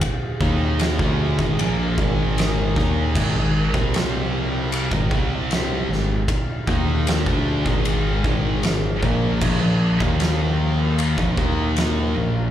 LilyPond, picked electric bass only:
\new Staff \with { instrumentName = "Picked electric bass" } { \clef bass \time 4/4 \key aes \lydian \tempo 4 = 77 r8 ees,8. d,8 aes,,16 bes,,8 aes,,4 ees,8 | aes,,16 aes,,8 c,4. aes,,16 c,4 aes,,8 | r8 ees,8. d,8 aes,,8. aes,,8 aes,,8 bes,,8 | bes,,16 bes,,8 ees,4. bes,,16 ees,4 bes,,8 | }